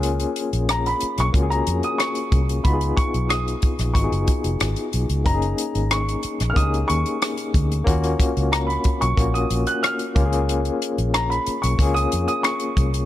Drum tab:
HH |xxxxxxxxxxxxxxxx|xxxxxxxxxxxxxxxx|xxxxxxxxxxxxxxxx|xxxxxxxxxxxxxxxx|
SD |----r--r----r---|----r--r----r---|----r--r----r---|----r-------r---|
BD |--------o-----o-|o-o---o-o-o-----|o-------o-----o-|o-o---o-o-----o-|

HH |xxxxxxxxxxxxxxxx|
SD |----r-------r---|
BD |--------o-----o-|